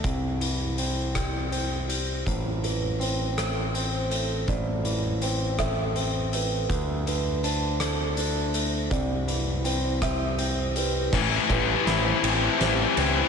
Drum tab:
CC |------|------|------|------|
RD |------|------|------|------|
HH |xxxxxx|xxxxxx|xxxxxx|xxxxxx|
SD |---r--|---r--|---r--|---r--|
BD |o--o--|o-----|o--o--|o-----|

CC |------|x-----|
RD |------|-xxxxx|
HH |xxxxxx|------|
SD |---r--|o-o-o-|
BD |o--o--|oo----|